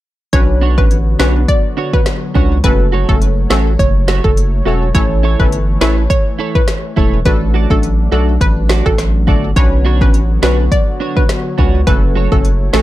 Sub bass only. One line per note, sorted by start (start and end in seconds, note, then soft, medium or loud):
0.33 0.79 B1 loud
0.78 1.16 A1 loud
1.20 1.46 B1 loud
2.35 2.61 C#2 loud
2.64 3.05 F#1 loud
3.09 3.46 F#1 medium
3.50 3.76 A1 loud
3.79 4.20 F#1 loud
4.24 4.62 F#1 loud
4.66 4.92 E1 loud
4.95 5.36 A1 loud
5.40 5.77 G1 medium
5.81 6.07 A1 medium
6.97 7.23 E1 medium
7.25 7.66 A1 loud
7.70 8.08 A1 medium
8.12 8.38 B1 loud
8.41 8.82 A1 loud
8.86 9.29 A1 medium
9.28 9.54 G1 medium
9.56 10.03 B1 loud
10.01 10.39 A1 medium
10.43 10.69 B1 loud
11.58 11.84 C#2 medium
11.87 12.28 F#1 loud
12.32 12.69 F#1 medium
12.74 12.82 A1 loud